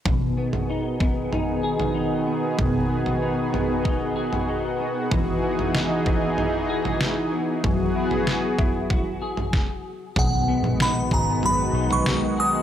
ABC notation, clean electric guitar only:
X:1
M:4/4
L:1/8
Q:1/4=95
K:B
V:1 name="Clean electric guitar"
B,, B, D B, D G D B, | B,, B, D B, D G D B, | E, B, D B, D G D B, | F, E F E F G z2 |
[B,,G] B, D G F, D B, G |]